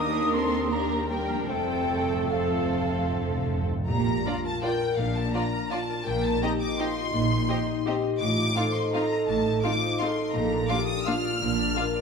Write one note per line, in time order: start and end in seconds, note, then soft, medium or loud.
0.00 1.44 D#2 medium
0.00 1.41 D#3 medium
0.00 1.14 A#3 medium
0.00 1.43 A#3 soft
0.00 0.68 D4 medium
0.00 1.18 D4 medium
0.00 1.45 D4 soft
0.00 0.33 D#4 medium
0.00 0.33 G4 medium
0.00 0.68 A#4 medium
0.00 1.47 A#4 soft
0.00 0.33 D#6 medium
0.00 0.34 D#6 medium
0.33 0.69 C4 medium
0.33 0.70 A4 medium
0.33 0.69 C6 medium
0.33 0.70 C6 medium
0.70 1.09 A#3 medium
0.70 1.08 D4 soft
0.70 1.09 G4 medium
0.70 1.08 A#4 soft
0.70 1.08 A#5 medium
0.70 1.10 A#5 medium
1.08 1.47 G3 medium
1.08 1.47 D4 soft
1.08 1.47 A#4 medium
1.08 1.47 A#4 soft
1.08 1.46 G5 medium
1.08 1.47 G5 medium
1.30 5.20 F3 soft
1.34 3.83 A3 soft
1.39 3.85 C4 soft
1.43 4.24 F4 soft
1.43 2.28 G5 medium
1.48 3.65 F1 soft
1.48 1.55 F2 soft
1.48 3.65 F2 medium
1.48 2.29 G3 medium
1.48 3.66 A3 soft
1.48 3.65 C4 soft
1.48 2.28 C4 soft
1.48 2.28 A4 soft
1.48 3.66 A4 medium
1.48 2.29 G5 medium
1.56 1.64 F2 soft
1.65 1.71 F2 soft
1.73 1.81 F2 soft
1.82 1.89 F2 soft
1.90 1.98 F2 soft
1.99 2.07 F2 soft
2.08 2.15 F2 soft
2.16 2.23 F2 soft
2.24 2.31 F2 soft
2.29 2.40 F2 soft
2.29 3.51 F3 soft
2.29 3.66 C4 soft
2.29 3.66 A4 soft
2.29 3.49 F5 medium
2.29 3.47 F5 soft
2.41 2.48 F2 soft
2.49 2.56 F2 soft
2.57 2.64 F2 soft
2.65 2.72 F2 soft
2.74 2.80 F2 soft
2.81 2.87 F2 soft
2.89 2.95 F2 soft
2.96 3.03 F2 medium
3.04 3.12 F2 medium
3.13 3.20 F2 medium
3.21 3.28 F2 medium
3.30 3.37 F2 medium
3.38 3.45 F2 medium
3.46 3.53 F2 medium
3.54 3.62 F2 medium
3.63 3.70 F2 medium
3.71 3.78 F2 medium
3.79 3.86 F2 medium
3.88 4.19 A#1 medium
3.88 4.97 A#2 medium
3.88 4.19 A#2 medium
3.88 4.23 G4 medium
3.88 4.41 A#5 medium
4.06 5.15 A#3 soft
4.25 4.34 D4 soft
4.25 5.33 F4 soft
4.25 4.34 F4 medium
4.25 4.34 F4 soft
4.25 4.64 F4 medium
4.25 4.34 D5 medium
4.44 4.80 A#4 soft
4.44 4.64 A5 medium
4.62 4.71 D4 soft
4.62 4.71 F4 soft
4.62 4.97 A#4 medium
4.62 4.70 D5 soft
4.62 5.70 D5 soft
4.62 4.98 G5 medium
4.81 5.51 A#4 soft
4.98 5.28 A#1 medium
4.98 6.05 A#2 medium
4.98 5.28 A#2 medium
4.98 5.72 D4 medium
4.98 5.16 F5 medium
5.15 8.22 A#3 soft
5.15 5.34 A5 medium
5.33 5.43 D4 soft
5.33 6.08 F4 soft
5.33 5.42 F4 soft
5.33 5.43 F4 soft
5.33 5.43 D5 soft
5.33 5.70 A#5 medium
5.53 5.88 A#4 soft
5.71 5.80 D4 soft
5.71 5.79 F4 soft
5.71 6.07 F4 medium
5.71 5.80 F4 medium
5.71 5.79 D5 soft
5.71 6.08 D5 medium
5.71 6.07 A5 medium
5.89 8.22 A#4 soft
6.05 6.37 A#1 medium
6.05 7.12 A#2 medium
6.05 6.36 A#2 medium
6.05 6.42 A#4 medium
6.05 6.24 G5 medium
6.24 7.29 D#4 soft
6.24 6.43 A5 medium
6.41 6.50 C4 soft
6.41 6.50 D#4 soft
6.41 6.79 G4 medium
6.41 6.77 G4 soft
6.41 6.51 G4 medium
6.41 6.51 D#5 soft
6.41 6.50 A#5 medium
6.61 6.95 D#5 soft
6.61 6.79 D6 medium
6.78 6.87 C4 soft
6.78 6.87 D#4 medium
6.78 7.14 F4 medium
6.78 7.47 G4 soft
6.78 6.88 G4 soft
6.78 6.88 D#5 soft
6.78 8.03 C6 medium
6.96 7.66 D#5 soft
7.13 7.43 A#1 medium
7.13 7.43 A#2 medium
7.13 8.21 A#2 medium
7.13 7.86 D#4 medium
7.30 8.37 D#4 soft
7.48 7.57 C4 soft
7.48 7.57 D#4 soft
7.48 7.84 G4 soft
7.48 7.57 G4 soft
7.48 7.57 D#5 soft
7.67 8.02 D#5 soft
7.85 7.95 C4 medium
7.85 7.95 D#4 soft
7.85 8.22 G4 soft
7.85 7.94 G4 soft
7.85 8.21 G4 medium
7.85 7.95 D#5 soft
8.03 8.74 D#5 soft
8.20 8.50 A1 medium
8.20 8.50 A2 medium
8.20 9.27 A2 medium
8.20 8.56 F4 medium
8.20 8.71 D6 medium
8.38 9.45 D#4 soft
8.56 8.65 C4 soft
8.56 8.65 D#4 medium
8.56 8.64 F4 soft
8.56 9.62 A4 medium
8.56 9.64 C5 soft
8.56 8.64 F5 medium
8.74 9.11 D#5 soft
8.74 8.93 C6 medium
8.93 9.02 C4 medium
8.93 9.02 D#4 medium
8.93 9.02 F4 medium
8.93 10.00 F5 medium
8.93 9.02 F5 soft
8.93 9.28 A#5 medium
9.12 9.82 D#5 soft
9.28 9.58 A1 medium
9.28 10.36 A2 medium
9.28 9.58 A2 medium
9.28 9.63 A5 medium
9.47 10.36 D#4 soft
9.63 9.72 C4 medium
9.63 9.72 D#4 medium
9.63 9.71 F4 medium
9.63 10.01 F4 medium
9.63 10.36 C5 soft
9.63 9.72 F5 soft
9.63 9.99 D6 medium
9.83 10.17 D#5 medium
9.99 10.10 C4 medium
9.99 10.09 D#4 medium
9.99 10.08 F4 medium
9.99 10.70 A4 medium
9.99 10.07 F5 soft
9.99 11.05 F5 medium
9.99 10.34 C6 medium
10.18 10.36 D#5 medium
10.34 10.64 A#1 medium
10.34 10.63 A#2 medium
10.34 11.40 A#2 medium
10.34 10.69 A#5 medium
10.52 11.57 D4 soft
10.68 10.78 A#3 medium
10.68 10.77 D4 medium
10.68 10.77 F4 soft
10.68 11.06 G4 medium
10.68 11.75 A#4 soft
10.68 10.77 F5 medium
10.68 10.87 D6 medium
10.86 11.23 D5 medium
10.86 11.05 D#6 medium
11.06 11.15 A#3 medium
11.06 11.15 D4 medium
11.06 11.14 F4 soft
11.06 11.42 F4 medium
11.06 12.01 F5 medium
11.06 11.14 F5 medium
11.06 12.01 F6 medium
11.25 11.95 D5 soft
11.42 11.70 A#1 medium
11.42 11.70 A#2 medium
11.42 12.01 A#2 medium
11.42 11.76 D4 medium
11.59 12.01 D4 soft
11.76 11.85 A#3 medium
11.76 11.85 D4 medium
11.76 11.84 F4 medium
11.76 12.01 A#4 medium
11.76 12.01 A#4 soft
11.76 11.84 F5 medium
11.96 12.01 D5 medium